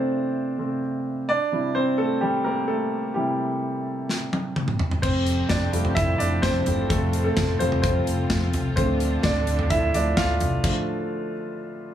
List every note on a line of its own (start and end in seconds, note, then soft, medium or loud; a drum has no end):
0.00 0.58 C3 soft
0.00 0.59 A3 soft
0.00 0.59 C4 medium
0.00 1.30 D4 medium
0.00 1.31 E4 medium
0.00 1.30 F4 medium
0.00 0.78 C5 medium
0.00 1.29 D5 medium
0.00 1.31 E5 medium
0.00 1.31 F5 medium
0.58 0.79 C3 soft
0.58 0.80 A3 soft
0.58 0.80 C4 soft
1.29 1.73 D4 medium
1.29 1.77 D5 loud
1.52 1.83 C3 soft
1.52 1.84 G3 soft
1.52 1.84 E4 soft
1.75 1.98 C4 medium
1.75 1.99 C5 medium
1.98 2.21 A3 medium
1.98 2.20 A4 medium
2.21 2.44 G3 medium
2.21 2.46 G4 medium
2.44 2.68 A#3 medium
2.44 2.67 A#4 medium
2.68 3.13 A3 medium
2.68 3.17 A4 medium
3.14 3.47 C3 soft
3.14 4.06 G3 medium
3.14 3.47 E4 soft
3.14 4.05 G4 medium
4.09 snare soft
4.33 high tom medium
4.56 mid tom medium
4.68 mid tom medium
4.79 floor tom medium
4.91 floor tom medium
5.02 5.41 F1 loud
5.02 8.74 F3 medium
5.02 5.47 C4 medium
5.02 8.74 C4 medium
5.02 6.89 G4 medium
5.02 8.74 A4 medium
5.02 5.51 C5 medium
5.02 kick loud
5.02 crash medium
5.26 closed hi-hat medium
5.49 5.69 F1 medium
5.49 5.94 D4 medium
5.49 5.97 D5 medium
5.49 kick medium
5.49 snare medium
5.49 closed hi-hat medium
5.72 5.92 F1 medium
5.72 6.65 F3 soft
5.72 6.65 G3 soft
5.72 6.66 A3 medium
5.72 closed hi-hat medium
5.85 floor tom medium
5.95 6.16 F1 medium
5.95 6.18 E4 medium
5.95 6.20 E5 medium
5.95 kick loud
5.95 closed hi-hat medium
6.18 6.39 F1 medium
6.18 6.42 D4 medium
6.18 6.43 D5 medium
6.18 closed hi-hat medium
6.42 6.62 F1 medium
6.42 6.87 C4 medium
6.42 6.86 C5 medium
6.42 kick loud
6.42 snare loud
6.42 closed hi-hat medium
6.66 6.86 G1 medium
6.66 6.88 F3 soft
6.66 6.88 G3 soft
6.66 6.88 A3 soft
6.66 closed hi-hat medium
6.66 floor tom medium
6.89 7.28 F1 medium
6.89 7.23 A3 medium
6.89 10.61 F4 medium
6.89 7.23 A4 medium
6.89 kick loud
6.89 closed hi-hat medium
7.13 closed hi-hat medium
7.24 7.58 A3 medium
7.24 7.61 A4 medium
7.37 7.56 F1 medium
7.37 kick loud
7.37 snare medium
7.37 closed hi-hat medium
7.59 7.79 F1 medium
7.59 8.27 F3 medium
7.59 8.27 G3 soft
7.59 8.27 A3 medium
7.59 7.82 C4 medium
7.59 7.80 C5 medium
7.59 closed hi-hat medium
7.72 floor tom medium
7.82 8.03 F1 medium
7.82 8.50 C4 medium
7.82 8.49 C5 medium
7.82 kick loud
7.82 closed hi-hat medium
8.07 8.26 F1 medium
8.07 closed hi-hat medium
8.30 8.49 F1 medium
8.30 kick loud
8.30 snare loud
8.30 closed hi-hat medium
8.53 8.73 C2 medium
8.53 closed hi-hat medium
8.53 floor tom medium
8.76 9.15 D2 medium
8.76 9.43 D3 soft
8.76 10.62 D3 medium
8.76 9.44 F3 soft
8.76 9.44 A3 medium
8.76 9.21 C4 medium
8.76 10.62 D4 medium
8.76 10.62 A4 medium
8.76 9.25 C5 medium
8.76 kick loud
8.76 closed hi-hat medium
9.00 closed hi-hat medium
9.23 9.43 D2 medium
9.23 9.68 D4 medium
9.23 9.67 D5 medium
9.23 kick loud
9.23 snare loud
9.23 closed hi-hat medium
9.47 9.66 D2 medium
9.47 closed hi-hat medium
9.59 floor tom medium
9.70 9.90 D2 loud
9.70 9.93 E4 medium
9.70 9.95 E5 medium
9.70 kick loud
9.70 closed hi-hat medium
9.94 10.13 D2 medium
9.94 10.15 D3 soft
9.94 10.15 F3 soft
9.94 10.16 A3 medium
9.94 10.16 D4 medium
9.94 10.18 D5 medium
9.94 closed hi-hat medium
10.17 10.36 D2 medium
10.17 11.94 F4 medium
10.17 11.94 F5 medium
10.17 kick loud
10.17 snare loud
10.17 closed hi-hat medium
10.40 10.60 C2 medium
10.40 closed hi-hat medium
10.40 floor tom medium
10.64 11.31 D3 medium
10.64 11.31 F3 soft
10.64 11.31 A3 medium
10.64 kick medium
10.64 crash medium